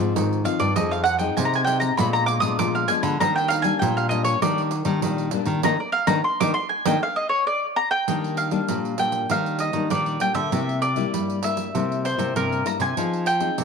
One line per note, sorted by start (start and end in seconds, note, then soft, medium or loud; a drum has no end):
0.00 0.13 G#2 medium
0.00 0.40 F3 medium
0.00 0.40 C4 medium
0.00 0.40 D#4 medium
0.15 0.42 G#2 medium
0.15 0.74 D#3 medium
0.15 pandeiro medium
0.33 pandeiro soft
0.44 0.71 F3 medium
0.44 0.71 C4 medium
0.44 0.71 D#4 medium
0.44 0.61 F5 medium
0.44 pandeiro medium
0.59 0.74 G2 loud
0.59 0.75 D5 medium
0.59 pandeiro medium
0.76 1.29 F2 loud
0.76 1.34 F3 medium
0.76 1.05 C4 medium
0.76 1.05 D#4 medium
0.76 1.06 G#4 medium
0.76 0.91 D#5 medium
0.76 pandeiro medium
0.91 1.03 F5 medium
0.91 pandeiro soft
1.04 1.18 F#5 medium
1.04 pandeiro medium
1.18 1.62 C4 medium
1.18 1.62 D#4 medium
1.18 1.63 G#4 medium
1.18 1.35 G5 medium
1.18 pandeiro medium
1.37 1.95 C3 medium
1.37 1.90 C3 medium
1.37 1.45 G#5 medium
1.37 pandeiro medium
1.45 1.55 A#5 medium
1.53 1.64 G#5 loud
1.53 pandeiro soft
1.64 1.93 C4 medium
1.64 1.94 D#4 medium
1.64 1.94 G#4 medium
1.64 1.80 G5 medium
1.64 pandeiro medium
1.80 1.96 A#5 medium
1.80 pandeiro medium
1.97 2.57 A#2 medium
1.97 2.38 A#2 loud
1.97 2.40 G#3 soft
1.97 2.40 B3 medium
1.97 2.40 D4 medium
1.97 2.13 B5 loud
1.97 pandeiro medium
2.13 2.26 A#5 loud
2.13 pandeiro soft
2.26 2.40 D6 loud
2.26 pandeiro medium
2.40 2.56 A#2 medium
2.40 2.84 G#3 medium
2.40 2.84 B3 medium
2.40 2.85 D4 medium
2.40 2.57 D#6 loud
2.40 pandeiro medium
2.59 2.85 A#2 medium
2.59 3.18 F3 medium
2.59 2.74 D6 medium
2.59 pandeiro medium
2.75 2.90 F5 medium
2.75 pandeiro soft
2.88 3.15 G#3 medium
2.88 3.15 B3 medium
2.88 3.16 D4 medium
2.88 3.02 G#5 medium
2.88 pandeiro medium
3.03 3.17 D3 loud
3.03 3.19 B5 loud
3.03 pandeiro medium
3.20 3.78 D#3 medium
3.20 3.72 D#3 loud
3.20 3.61 G3 soft
3.20 3.62 A#3 soft
3.20 3.62 D4 medium
3.20 3.35 A#5 loud
3.20 pandeiro medium
3.36 3.50 G5 medium
3.36 pandeiro soft
3.48 3.64 F5 loud
3.48 pandeiro medium
3.62 4.06 G3 medium
3.62 4.06 A#3 medium
3.62 4.07 D4 medium
3.62 3.79 G#5 loud
3.62 pandeiro medium
3.79 4.39 A#2 medium
3.79 4.33 A#2 loud
3.79 3.95 G5 medium
3.79 pandeiro medium
3.97 4.09 F5 medium
3.97 pandeiro soft
4.09 4.37 G3 medium
4.09 4.37 A#3 medium
4.09 4.37 D4 medium
4.09 4.24 D#5 medium
4.09 pandeiro medium
4.24 4.41 C#5 medium
4.24 pandeiro medium
4.41 5.00 D#3 medium
4.41 4.81 D#3 medium
4.41 4.71 G3 medium
4.41 4.71 A#3 medium
4.41 4.71 D4 medium
4.41 4.60 D5 medium
4.41 pandeiro medium
4.58 pandeiro soft
4.71 pandeiro medium
4.85 4.99 D#3 loud
4.85 5.28 G3 medium
4.85 5.28 A#3 medium
4.85 5.28 D4 medium
4.85 pandeiro medium
5.02 5.62 A#2 medium
5.02 5.29 D#3 medium
5.02 pandeiro medium
5.18 pandeiro soft
5.31 5.59 G3 medium
5.31 5.59 A#3 medium
5.31 5.59 D4 medium
5.31 pandeiro medium
5.45 5.60 D#3 loud
5.45 pandeiro medium
5.63 5.76 D#3 loud
5.63 5.74 A#3 medium
5.63 5.74 D4 medium
5.63 5.74 D#4 medium
5.63 5.79 A#5 medium
5.63 pandeiro loud
5.80 5.92 D5 medium
5.92 6.08 F5 loud
6.07 6.20 D#3 loud
6.07 6.18 A#3 loud
6.07 6.18 D4 loud
6.07 6.19 D#4 loud
6.07 6.23 A#5 loud
6.07 pandeiro loud
6.24 6.39 C6 medium
6.40 6.52 D#3 medium
6.40 6.51 A#3 medium
6.40 6.51 D4 medium
6.40 6.51 D#4 medium
6.40 6.53 D6 loud
6.40 pandeiro loud
6.54 6.69 C6 loud
6.69 6.85 G#5 medium
6.86 6.97 D#3 loud
6.86 6.96 A#3 medium
6.86 6.96 D4 medium
6.86 6.96 D#4 medium
6.86 7.01 G5 medium
6.86 pandeiro loud
7.03 7.17 F5 medium
7.16 7.29 D#5 medium
7.29 7.45 C#5 medium
7.47 7.65 D5 medium
7.76 7.90 A#5 loud
7.91 8.35 G5 loud
8.08 8.66 D#3 medium
8.08 8.60 D#3 medium
8.08 8.49 G3 soft
8.08 8.49 A#3 soft
8.08 8.49 D4 medium
8.08 pandeiro medium
8.24 pandeiro soft
8.37 8.99 F5 medium
8.37 pandeiro medium
8.51 8.94 G3 medium
8.51 8.94 A#3 medium
8.51 8.94 D4 medium
8.51 pandeiro medium
8.68 9.27 A#2 medium
8.68 9.21 A#2 medium
8.68 pandeiro medium
8.85 pandeiro soft
8.98 9.25 G3 medium
8.98 9.25 A#3 medium
8.98 9.26 D4 medium
8.98 9.31 G5 medium
8.98 pandeiro medium
9.12 pandeiro medium
9.30 9.69 D#3 loud
9.30 9.89 D#3 soft
9.30 9.72 G3 medium
9.30 9.72 A#3 medium
9.30 9.72 D4 medium
9.30 9.62 F5 loud
9.30 pandeiro medium
9.46 pandeiro soft
9.59 9.89 D#5 medium
9.59 pandeiro medium
9.73 9.88 D#3 medium
9.73 10.17 G3 medium
9.73 10.17 A#3 medium
9.73 10.17 D4 medium
9.73 pandeiro medium
9.90 10.50 A#2 medium
9.90 10.18 D#3 medium
9.90 10.20 D5 medium
9.90 pandeiro medium
10.06 pandeiro soft
10.20 10.40 G3 medium
10.20 10.40 A#3 medium
10.20 10.40 D4 medium
10.20 10.34 G5 medium
10.20 pandeiro medium
10.34 10.49 D3 medium
10.34 10.79 E5 loud
10.34 pandeiro medium
10.52 11.11 C3 medium
10.52 11.04 C3 loud
10.52 10.81 G3 soft
10.52 10.81 A#3 soft
10.52 10.82 E4 medium
10.52 pandeiro medium
10.69 pandeiro soft
10.82 11.40 D5 medium
10.82 pandeiro medium
10.96 11.39 G3 medium
10.96 11.39 A#3 medium
10.96 11.39 E4 medium
10.96 pandeiro medium
11.13 11.72 G2 medium
11.13 11.66 G3 medium
11.13 pandeiro medium
11.30 pandeiro soft
11.43 11.70 G3 medium
11.43 11.70 A#3 medium
11.43 11.70 E4 medium
11.43 12.05 E5 medium
11.43 pandeiro medium
11.57 pandeiro medium
11.75 12.14 C3 medium
11.75 12.33 C3 medium
11.75 12.04 G3 medium
11.75 12.04 A#3 soft
11.75 12.04 E4 medium
11.75 pandeiro medium
11.92 pandeiro soft
12.05 12.34 C5 medium
12.05 pandeiro medium
12.17 12.32 C3 loud
12.17 12.60 G3 medium
12.17 12.60 A#3 medium
12.17 12.60 E4 medium
12.17 pandeiro medium
12.35 12.94 G2 medium
12.35 12.62 C3 medium
12.35 12.64 A#4 medium
12.35 pandeiro medium
12.52 pandeiro soft
12.65 12.84 G3 medium
12.65 12.84 A#3 medium
12.65 12.84 E4 medium
12.65 12.81 A#5 medium
12.65 pandeiro medium
12.80 12.94 C3 loud
12.80 13.24 G#5 loud
12.80 pandeiro medium
12.97 13.55 F3 soft
12.97 13.49 F3 loud
12.97 13.26 C4 medium
12.97 13.26 D#4 medium
12.97 13.26 G#4 medium
12.97 pandeiro medium
13.13 pandeiro soft
13.26 13.64 G5 loud
13.26 pandeiro medium
13.40 13.64 C4 medium
13.40 13.64 D#4 medium
13.40 13.64 G#4 medium
13.40 pandeiro medium
13.58 13.64 C3 medium
13.58 13.64 C3 loud
13.58 pandeiro medium